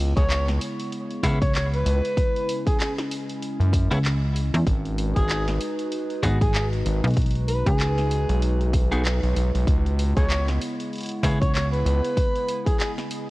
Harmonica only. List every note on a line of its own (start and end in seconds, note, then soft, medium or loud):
0.17 0.23 G#4 medium
0.17 0.44 C#5 medium
1.42 1.50 C#5 medium
1.55 1.66 C#5 medium
1.74 2.60 B4 loud
2.67 2.75 G#4 medium
2.80 2.91 G#4 medium
5.16 5.44 G#4 loud
6.42 6.50 G#4 medium
6.54 6.66 G#4 medium
7.48 7.63 B4 medium
7.67 8.53 G#4 loud
10.17 10.26 G#4 medium
10.17 10.45 C#5 medium
11.42 11.50 C#5 medium
11.54 11.66 C#5 medium
11.73 12.59 B4 loud
12.66 12.75 G#4 medium
12.79 12.91 G#4 medium